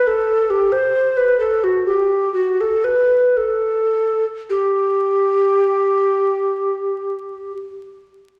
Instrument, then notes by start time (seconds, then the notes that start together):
recorder
0.07 A4
0.50 G4
0.72 C5
1.17 B4
1.40 A4
1.64 F#4
1.86 G4
2.34 F#4
2.61 A4
2.84 B4
3.37 A4
4.50 G4